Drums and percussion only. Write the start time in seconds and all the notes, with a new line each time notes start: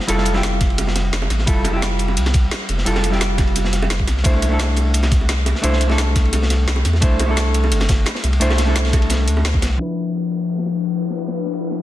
0.00 snare
0.08 closed hi-hat, ride, high bongo
0.18 snare
0.25 closed hi-hat, ride
0.34 snare, high bongo
0.43 snare, closed hi-hat, ride
0.53 high bongo
0.60 kick, snare, closed hi-hat, ride
0.70 ride
0.78 closed hi-hat, ride, high bongo
0.87 snare
0.96 snare, closed hi-hat, ride, high bongo
1.13 snare, closed hi-hat, ride
1.22 high bongo
1.30 snare, closed hi-hat, ride
1.38 snare, high bongo
1.47 kick, closed hi-hat, ride
1.64 closed hi-hat, ride, high bongo
1.82 snare, closed hi-hat, ride, high bongo
1.99 closed hi-hat, ride
2.08 high bongo
2.17 closed hi-hat, ride
2.26 snare, high bongo
2.34 kick, snare, closed hi-hat, ride
2.51 snare, closed hi-hat, ride, high bongo
2.69 closed hi-hat, ride, high bongo
2.78 snare
2.86 closed hi-hat, ride
2.95 snare, high bongo
3.04 closed hi-hat, ride
3.12 snare, high bongo
3.21 snare, closed hi-hat, ride
3.38 kick, snare, closed hi-hat, ride, high bongo
3.47 ride
3.56 closed hi-hat, ride, high bongo
3.64 snare
3.73 snare, closed hi-hat, ride
3.82 high bongo
3.90 snare, closed hi-hat, ride
3.99 kick, high bongo
4.08 snare, closed hi-hat, ride
4.17 snare
4.24 kick, closed hi-hat, ride
4.34 high bongo
4.42 closed hi-hat, ride
4.59 snare, closed hi-hat, ride, high bongo
4.76 closed hi-hat, ride, high bongo
4.94 closed hi-hat, ride
5.03 snare, high bongo
5.12 kick, snare, closed hi-hat, ride
5.21 high bongo
5.29 snare, closed hi-hat, ride
5.46 closed hi-hat, ride, high bongo
5.55 snare
5.63 closed hi-hat, ride, high bongo
5.73 snare
5.81 closed hi-hat, ride
5.90 snare, high bongo
5.98 snare, closed hi-hat, ride
6.08 high bongo
6.16 kick, snare, closed hi-hat, ride
6.25 ride
6.33 closed hi-hat, ride, high bongo
6.42 snare
6.50 snare, closed hi-hat, ride, high bongo
6.67 snare, closed hi-hat, ride
6.76 high bongo
6.85 snare, closed hi-hat, ride
6.93 snare, high bongo
7.02 kick, closed hi-hat, ride
7.19 closed hi-hat, ride, high bongo
7.36 snare, closed hi-hat, ride, high bongo
7.54 closed hi-hat, ride
7.64 high bongo
7.72 closed hi-hat, ride
7.80 snare, high bongo
7.88 kick, snare, closed hi-hat, ride
8.06 snare, closed hi-hat, ride, high bongo
8.15 snare, ride
8.24 closed hi-hat, high bongo
8.33 ride
8.41 closed hi-hat, ride
8.50 snare, high bongo
8.58 snare, closed hi-hat, ride
8.67 high bongo
8.76 snare, closed hi-hat, ride
8.85 snare, ride
8.93 kick, snare, closed hi-hat, high bongo
9.02 ride
9.10 snare, closed hi-hat, ride, high bongo
9.28 closed hi-hat, ride
9.37 high bongo
9.45 snare, closed hi-hat, ride
9.54 kick, high bongo
9.62 snare, closed hi-hat, ride
9.80 ride
9.97 ride
10.15 ride
10.31 ride
10.49 ride
10.58 snare
10.66 snare, ride
10.84 ride
11.02 ride
11.10 snare
11.18 ride
11.28 snare
11.36 ride
11.45 snare
11.53 ride
11.71 snare, open hi-hat, ride